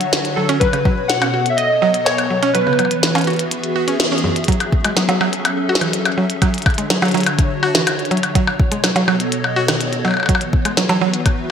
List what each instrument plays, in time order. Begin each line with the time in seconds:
Already playing: analog synth pad D3 D4 F#4 C#5 E5, synth keys F#5
0.01 closed hi-hat
0.13 snare, closed hi-hat
0.25 closed hi-hat
0.35 synth arpeggio sound F#3, synth keys A4
0.49 synth arpeggio sound C#4, closed hi-hat
0.60 analog synth pad B2, synth arpeggio sound F#3, synth keys B4, kick, closed hi-hat
0.73 synth arpeggio sound C#3, closed hi-hat, percussion blips
0.85 synth arpeggio sound F#3, analog synth pad B3, kick
1.06 analog synth pad A4, synth keys F#5, snare, closed hi-hat
1.22 synth arpeggio sound C#4, closed hi-hat, percussion blips
1.34 synth arpeggio sound F#4
1.46 analog synth pad D#5, synth keys E5, closed hi-hat
1.56 synth keys D#5, closed hi-hat
1.82 synth arpeggio sound F#3
1.94 closed hi-hat
2.05 synth keys C#5, snare, closed hi-hat
2.18 closed hi-hat, percussion blips
2.30 synth arpeggio sound F#3
2.43 synth arpeggio sound C#4, closed hi-hat
2.53 analog synth pad E3, synth arpeggio sound F#3, synth keys B4, closed hi-hat
2.67 synth arpeggio sound C#3, percussion blips
2.73 percussion blips
2.79 synth arpeggio sound F#3, closed hi-hat, percussion blips
2.85 percussion blips
2.91 closed hi-hat
2.98 analog synth pad F#4
3.03 analog synth pad E5, snare, closed hi-hat
3.15 synth arpeggio sound C#4, closed hi-hat, percussion blips
3.18 closed hi-hat
3.21 closed hi-hat
3.24 synth arpeggio sound F#4, analog synth pad G#4, closed hi-hat
3.27 closed hi-hat
3.30 closed hi-hat
3.33 closed hi-hat
3.36 closed hi-hat
3.39 closed hi-hat
3.51 closed hi-hat
3.64 closed hi-hat
3.76 synth arpeggio sound F#4
3.88 synth arpeggio sound C#4, closed hi-hat
4.00 snare, closed hi-hat
4.12 synth arpeggio sound C#4
4.18 closed hi-hat
4.24 synth arpeggio sound F#2
4.36 closed hi-hat
4.44 closed hi-hat
4.48 synth arpeggio sound F#3, analog synth pad F#3, kick, closed hi-hat
4.52 closed hi-hat
4.60 closed hi-hat, percussion blips
4.68 analog synth pad C#4
4.72 kick
4.85 synth arpeggio sound G#3, closed hi-hat, percussion blips
4.89 analog synth pad A4
4.97 synth arpeggio sound F#3, snare, closed hi-hat
5.09 synth arpeggio sound F#3, closed hi-hat, percussion blips
5.21 synth arpeggio sound F#3, percussion blips
5.33 closed hi-hat
5.45 closed hi-hat, percussion blips
5.69 synth arpeggio sound F#4
5.75 snare
5.81 synth arpeggio sound E3, closed hi-hat, percussion blips
5.93 closed hi-hat
6.05 closed hi-hat, percussion blips
6.18 synth arpeggio sound F#3
6.30 closed hi-hat
6.42 analog synth pad D3, synth arpeggio sound F#3, kick, closed hi-hat, percussion blips
6.51 analog synth pad D4 C#5, closed hi-hat
6.58 closed hi-hat
6.62 closed hi-hat
6.66 kick, closed hi-hat, percussion blips
6.70 analog synth pad F#4, closed hi-hat
6.74 closed hi-hat
6.78 synth arpeggio sound G#3, closed hi-hat
6.90 synth arpeggio sound F#3, snare, closed hi-hat
7.02 synth arpeggio sound F#3, closed hi-hat, percussion blips
7.05 closed hi-hat
7.08 closed hi-hat
7.11 closed hi-hat
7.14 synth arpeggio sound F#3, closed hi-hat
7.17 closed hi-hat
7.20 closed hi-hat
7.23 closed hi-hat
7.26 closed hi-hat, percussion blips
7.39 kick, closed hi-hat
7.63 synth arpeggio sound F#4, percussion blips
7.75 synth arpeggio sound E3, snare, closed hi-hat
7.87 closed hi-hat, percussion blips
7.99 closed hi-hat
8.05 closed hi-hat
8.11 synth arpeggio sound F#3, closed hi-hat
8.17 closed hi-hat
8.23 closed hi-hat, percussion blips
8.35 analog synth pad B2, synth arpeggio sound F#3, kick, closed hi-hat
8.45 analog synth pad B3, percussion blips
8.60 kick
8.72 synth arpeggio sound G#3, closed hi-hat
8.76 analog synth pad A4
8.84 synth arpeggio sound F#3, snare, closed hi-hat, percussion blips
8.96 synth arpeggio sound F#3, analog synth pad D#5, closed hi-hat, percussion blips
9.08 synth arpeggio sound F#3, percussion blips
9.20 closed hi-hat
9.32 closed hi-hat
9.44 percussion blips
9.56 synth arpeggio sound F#4
9.68 synth arpeggio sound D#3, snare, closed hi-hat, percussion blips
9.81 closed hi-hat
9.93 closed hi-hat
10.05 synth arpeggio sound F#3, percussion blips
10.08 percussion blips
10.11 percussion blips
10.14 percussion blips
10.17 percussion blips
10.20 percussion blips
10.23 percussion blips
10.26 analog synth pad E3, synth arpeggio sound F#3, kick, closed hi-hat, percussion blips
10.35 percussion blips
10.41 closed hi-hat
10.53 kick
10.65 synth arpeggio sound G#3, closed hi-hat, percussion blips
10.76 synth arpeggio sound F#3, analog synth pad B4, snare, closed hi-hat
10.82 analog synth pad F#4
10.89 synth arpeggio sound F#3, closed hi-hat, percussion blips
11.01 synth arpeggio sound F#3
11.13 analog synth pad E5, closed hi-hat
11.26 kick, closed hi-hat, percussion blips